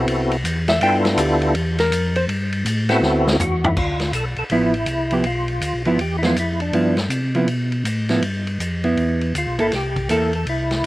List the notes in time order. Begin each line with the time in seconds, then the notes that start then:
Already playing: B3 C4 E4 F#4 A4
0.07 C2, ride
0.31 ride
0.44 E2, hi-hat pedal, ride
0.68 E5, snare, ride
0.81 G2 B3 D4 E4 F4 A4 G5, ride
1.05 snare, ride
1.17 D2 G4, hi-hat pedal, ride
1.42 ride
1.54 E2, ride
1.78 A#4, snare, ride
1.91 F2, hi-hat pedal, ride
2.16 C5, ride
2.28 G2, ride
2.52 ride
2.65 A2, hi-hat pedal, ride
2.89 B3 C4 E4 F#4 A4, snare, ride
3.01 D2, snare
3.27 snare
3.39 E2 F#4, floor tom, hi-hat pedal
3.64 E4, floor tom
3.76 D2 F4, kick, crash
4.00 snare, ride
4.12 B1 A4, hi-hat pedal, ride
4.36 B1 A4, ride
4.50 A1 F3 B3 E4, ride
4.74 ride
4.86 C2, hi-hat pedal, ride
5.11 F3 B3 E4 G4, ride
5.24 B1 F4, ride
5.48 ride
5.61 D2, hi-hat pedal, ride
5.74 B1
5.85 G1 F3 B3 E4, ride
5.98 E2 G4, ride
6.18 E4
6.23 F3 B3 E4 F4, snare, ride
6.35 F2, hi-hat pedal, ride
6.40 E4
6.60 D4, ride
6.72 G2 F3 B3 E4, ride
6.97 snare, ride
7.09 C3, hi-hat pedal, ride
7.35 F3 B3 E4, ride
7.47 B2, ride
7.72 ride
7.84 A2, hi-hat pedal, ride
8.09 F3 B3 E4, snare, ride
8.21 G2, ride
8.47 ride
8.59 F2, hi-hat pedal, ride
8.84 B3 E4, ride
8.96 E2, ride
9.21 ride
9.34 D2 F4, hi-hat pedal, ride
9.47 B1
9.59 G1 A#3 E4 A4, ride
9.72 C2 G4, snare, ride
9.96 kick, ride
10.09 E2 A#3 E4 A4, hi-hat pedal, ride
10.33 A4, ride
10.46 C2 E4, ride
10.71 snare, ride